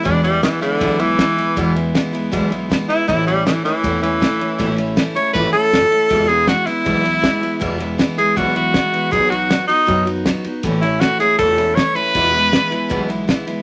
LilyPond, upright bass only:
\new Staff \with { instrumentName = "Upright bass" } { \clef bass \time 4/4 \key e \major \tempo 4 = 159 e,4. r8 b,,4. r8 | e,4. r8 b,,4. r8 | a,,4. r8 e,4. r8 | a,,4. r8 gis,,8 r8 fis,,8 r8 |
e,,4. r8 b,,4. r8 | e,,4. r8 b,,4. r8 | b,,4. r8 fis,4. r8 | a,,4. r8 e,,4. r8 |
e,,4. r8 b,,4. r8 | }